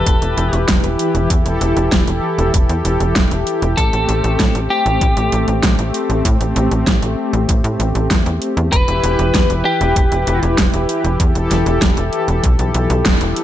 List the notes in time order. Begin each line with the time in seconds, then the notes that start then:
Already playing: E3 E4 G4 A4 B4
0.06 E1, kick, closed hi-hat
0.22 E1, closed hi-hat
0.37 E1, closed hi-hat
0.53 E1, closed hi-hat
0.68 E1, kick, snare, closed hi-hat
0.84 E1, closed hi-hat
0.99 closed hi-hat
1.15 E1, closed hi-hat
1.30 E2 A4, kick, closed hi-hat
1.46 E1, closed hi-hat
1.61 E1, closed hi-hat
1.77 E1, closed hi-hat
1.92 E1, kick, snare, closed hi-hat
2.07 E1, closed hi-hat
2.38 E1, closed hi-hat
2.54 E1, kick, closed hi-hat
2.69 E2, closed hi-hat
2.85 E1, closed hi-hat
3.00 E1, closed hi-hat
3.16 E1, kick, snare, closed hi-hat
3.31 E1, closed hi-hat
3.47 closed hi-hat
3.62 E1, closed hi-hat
3.77 A1 A3 C4 A4, kick, closed hi-hat
3.93 A1, closed hi-hat
4.09 A1, closed hi-hat
4.24 A1, closed hi-hat
4.39 A2, kick, snare, closed hi-hat
4.55 A1, closed hi-hat
4.70 G4
4.86 A1, closed hi-hat
5.01 A1, kick, closed hi-hat
5.17 A1, closed hi-hat
5.32 A1, closed hi-hat
5.48 A1, closed hi-hat
5.63 A1, kick, snare, closed hi-hat
5.79 A1, closed hi-hat
5.94 closed hi-hat
6.10 A1, closed hi-hat
6.25 A2, kick, closed hi-hat
6.41 A1, closed hi-hat
6.56 A1, closed hi-hat
6.71 A1, closed hi-hat
6.87 A1, kick, snare, closed hi-hat
7.02 A1, closed hi-hat
7.33 A1, closed hi-hat
7.49 A1, kick, closed hi-hat
7.64 A2, closed hi-hat
7.80 A1, closed hi-hat
7.95 A1, closed hi-hat
8.11 E2, kick, snare, closed hi-hat
8.26 E2, closed hi-hat
8.42 closed hi-hat
8.57 E2, closed hi-hat
8.72 E1 E3 E4 G4 B4, kick, closed hi-hat
8.88 E1, closed hi-hat
9.04 E1, closed hi-hat
9.19 E1, closed hi-hat
9.34 E2, kick, snare, closed hi-hat
9.50 E1, closed hi-hat
9.65 G4
9.81 E1, closed hi-hat
9.96 E1, kick, closed hi-hat
10.12 E1, closed hi-hat
10.27 E1, closed hi-hat
10.43 E1, closed hi-hat
10.58 E1, kick, snare, closed hi-hat
10.74 E1, closed hi-hat
10.89 closed hi-hat
11.05 E1, closed hi-hat
11.20 E2 A4, kick, closed hi-hat
11.35 E1, closed hi-hat
11.51 E1, snare, closed hi-hat
11.66 E1, closed hi-hat
11.82 E1, kick, snare, closed hi-hat
11.97 E1, closed hi-hat
12.13 closed hi-hat
12.28 E1, closed hi-hat
12.44 B1, kick, closed hi-hat
12.59 B1, closed hi-hat
12.74 B1, closed hi-hat
12.90 B1, closed hi-hat
13.05 E1, kick, snare, closed hi-hat
13.21 E1, closed hi-hat
13.36 closed hi-hat